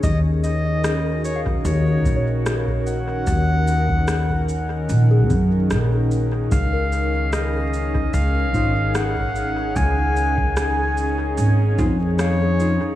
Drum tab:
SH |x-x-x-x-x-x-x-x-|x-x-x-x-x-x-x-x-|x-x-x-x-x-x-x-x-|x-x-x-x-x-x-x-x-|
SD |----r-------r---|----r-------r---|----r-------r---|----r-------r---|
BD |o------o--o--o--|o--o-o----o-----|o------o--o--o--|o--o------o-----|